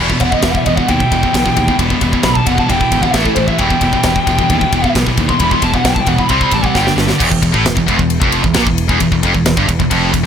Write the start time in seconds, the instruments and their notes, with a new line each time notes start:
Already playing: distorted electric guitar E3
0.00 picked electric bass E1, distorted electric guitar E2 B2 E3 G3 B3 E4
0.10 distorted electric guitar E2 B2, kick
0.20 picked electric bass E1, distorted electric guitar E2 B2, lead electric guitar F#5, kick, ride
0.25 distorted electric guitar E2 B2
0.32 distorted electric guitar E2 B2, lead electric guitar D#5, kick
0.36 distorted electric guitar B2
0.42 picked electric bass E1, distorted electric guitar E2 B2, lead electric guitar E5, kick, snare, ride
0.51 lead electric guitar F#5, kick
0.57 lead electric guitar E5
0.65 picked electric bass E1, distorted electric guitar E2 B2, lead electric guitar D#5, kick, ride
0.76 distorted electric guitar E2 B2, lead electric guitar F#5, kick
0.88 picked electric bass D#2, distorted electric guitar E2 B2 E3 G3 B3 E4, lead electric guitar G5, kick, ride
1.00 kick
1.12 picked electric bass E1, distorted electric guitar E2 B2, kick, ride
1.23 distorted electric guitar E2 B2, kick
1.33 picked electric bass B1, distorted electric guitar E2 B2, kick, snare, ride
1.46 distorted electric guitar E2 B2, kick
1.57 picked electric bass D#2, distorted electric guitar E2 B2, kick, ride
1.68 distorted electric guitar E2 B2, kick
1.77 picked electric bass E1, distorted electric guitar E2 B2 E3 G3 B3 E4, kick, ride
1.90 distorted electric guitar E2 B2, kick
2.01 picked electric bass E1, distorted electric guitar E2 B2, kick, ride
2.12 distorted electric guitar E2 B2, kick
2.23 picked electric bass B1, distorted electric guitar E2 B2, lead electric guitar B5, kick, snare, ride
2.35 lead electric guitar A5, kick
2.46 picked electric bass E1, distorted electric guitar E2 B2, lead electric guitar F#5, kick, ride
2.57 distorted electric guitar E2 B2, lead electric guitar A5, kick
2.68 picked electric bass E1, distorted electric guitar E2 B2 E3 G3 B3 E4, lead electric guitar G5, kick, ride
2.81 kick
2.92 picked electric bass G#1, distorted electric guitar E2 B2, kick, ride
3.02 distorted electric guitar E2 B2, lead electric guitar F#5, kick
3.13 picked electric bass A1, distorted electric guitar A2 E3 A3 E4, lead electric guitar E5, kick, snare, ride
3.25 distorted electric guitar A2 E3, lead electric guitar A4, kick
3.35 picked electric bass A1, distorted electric guitar A2 E3, lead electric guitar C5, kick, ride
3.48 distorted electric guitar A2 E3, lead electric guitar E5, kick
3.58 picked electric bass E1, distorted electric guitar E2 B2 E3 G3 B3 E4, lead electric guitar G5, kick, ride
3.70 distorted electric guitar E2 B2, kick
3.81 picked electric bass E1, distorted electric guitar E2 B2, kick, ride
3.93 distorted electric guitar E2 B2, kick
4.03 picked electric bass E1, distorted electric guitar E2 B2, kick, snare, ride
4.16 kick
4.27 picked electric bass E1, distorted electric guitar E2 B2, kick, ride
4.39 distorted electric guitar E2 B2, kick
4.49 picked electric bass D#2, distorted electric guitar E2 B2 E3 G3 B3 E4, kick, ride
4.61 kick
4.72 picked electric bass E1, distorted electric guitar E2 B2, kick, ride
4.84 distorted electric guitar E2 B2, kick
4.95 picked electric bass B1, distorted electric guitar E2 B2, kick, snare, ride
5.06 distorted electric guitar E2 B2, kick
5.17 picked electric bass D#2, distorted electric guitar E2 B2, kick, ride
5.29 distorted electric guitar E2 B2, lead electric guitar C6, kick
5.40 picked electric bass E1, distorted electric guitar E2 B2 E3 G3 B3 E4, lead electric guitar B5, kick, ride
5.51 distorted electric guitar E2 B2, lead electric guitar C6, kick
5.62 picked electric bass E1, distorted electric guitar E2 B2, lead electric guitar A5, kick, ride
5.74 distorted electric guitar E2 B2, lead electric guitar F#5, kick
5.85 picked electric bass B1, distorted electric guitar E2 B2, lead electric guitar G5, kick, snare, ride
5.94 lead electric guitar A5, kick
6.01 lead electric guitar G5
6.06 picked electric bass E1, distorted electric guitar E2 B2, lead electric guitar F#5, kick, ride
6.18 distorted electric guitar E2 B2, lead electric guitar B5, kick
6.28 picked electric bass C2, distorted electric guitar C3 G3 C4 G4, lead electric guitar C6, kick, ride
6.41 lead electric guitar B5, kick
6.51 picked electric bass A1, distorted electric guitar C3 G3, lead electric guitar A5, kick, ride
6.64 distorted electric guitar C3 G3, lead electric guitar F#5, kick
6.74 picked electric bass G1, distorted electric guitar G2 D3 G3 D4 G4 D5, lead electric guitar G5, kick, snare
6.87 distorted electric guitar G2 D3, snare
6.97 picked electric bass G1, distorted electric guitar G2 D3, snare
7.08 distorted electric guitar G2 D3, snare
7.19 picked electric bass E1, distorted electric guitar E2, kick, crash
7.30 picked electric bass E1, distorted electric guitar E2, kick
7.42 picked electric bass E1, distorted electric guitar E2, kick, ride
7.53 picked electric bass A1, distorted electric guitar A2, kick
7.65 picked electric bass E1, distorted electric guitar E2, snare, ride
7.75 picked electric bass E1, distorted electric guitar E2, kick
7.86 picked electric bass E1, distorted electric guitar E2, kick, ride
7.98 picked electric bass E1, distorted electric guitar E2, kick
8.10 ride
8.20 picked electric bass F1, distorted electric guitar F2, kick
8.32 ride
8.43 picked electric bass E1, distorted electric guitar E2, kick
8.54 picked electric bass A#1, distorted electric guitar A#2, snare, ride
8.65 picked electric bass E1, distorted electric guitar E2, kick
8.78 ride
8.88 picked electric bass E1, distorted electric guitar E2, kick
8.99 picked electric bass E1, distorted electric guitar E2, kick, ride
9.12 picked electric bass E1, distorted electric guitar E2, kick
9.23 picked electric bass F1, distorted electric guitar F2, kick, ride
9.34 picked electric bass E1, distorted electric guitar E2, kick
9.46 picked electric bass E1, distorted electric guitar E2, snare, ride
9.57 picked electric bass G1, distorted electric guitar G2, kick
9.68 picked electric bass E1, distorted electric guitar E2, kick, ride
9.79 picked electric bass E1, distorted electric guitar E2, kick
9.90 picked electric bass F1, distorted electric guitar F2, kick, ride
10.12 picked electric bass E1, distorted electric guitar E2, kick, ride